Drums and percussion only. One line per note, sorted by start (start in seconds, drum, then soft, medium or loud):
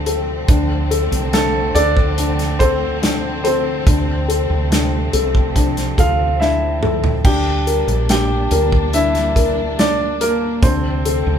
0.06 closed hi-hat medium
0.48 kick loud
0.48 closed hi-hat medium
0.91 closed hi-hat medium
1.12 closed hi-hat soft
1.33 snare medium
1.33 closed hi-hat medium
1.76 closed hi-hat medium
1.97 kick medium
2.18 closed hi-hat medium
2.39 snare soft
2.39 closed hi-hat soft
2.60 kick medium
2.60 closed hi-hat medium
3.03 snare loud
3.03 closed hi-hat medium
3.45 closed hi-hat medium
3.87 kick loud
3.87 closed hi-hat medium
4.30 closed hi-hat medium
4.72 snare medium
4.72 closed hi-hat medium
5.13 closed hi-hat medium
5.35 kick medium
5.56 kick medium
5.56 closed hi-hat medium
5.77 snare soft
5.77 closed hi-hat soft
5.98 kick medium
5.98 closed hi-hat medium
6.42 snare soft
6.83 mid tom medium
7.04 floor tom medium
7.25 kick loud
7.25 crash medium
7.67 closed hi-hat medium
7.88 closed hi-hat soft
8.09 snare medium
8.09 closed hi-hat medium
8.51 closed hi-hat medium
8.72 kick medium
8.93 closed hi-hat medium
9.15 snare soft
9.15 closed hi-hat soft
9.36 kick medium
9.36 closed hi-hat medium
9.79 snare loud
9.79 closed hi-hat medium
10.21 closed hi-hat medium
10.63 kick loud
10.63 closed hi-hat medium
11.05 closed hi-hat medium